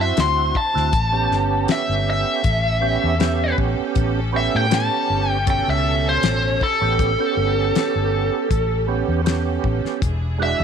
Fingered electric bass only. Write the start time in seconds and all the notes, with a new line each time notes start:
Already playing: F#2
0.18 D2
0.76 D2
0.93 A1
1.31 G1
1.89 G1
2.45 A1
3.04 E2
3.58 A1
3.96 A1
4.55 A2
5.10 G1
5.68 C#2
6.23 A1
6.82 A1
7.37 G1
7.96 G1
8.51 A1
9.08 E2
9.64 A1
10.02 E1
10.60 E2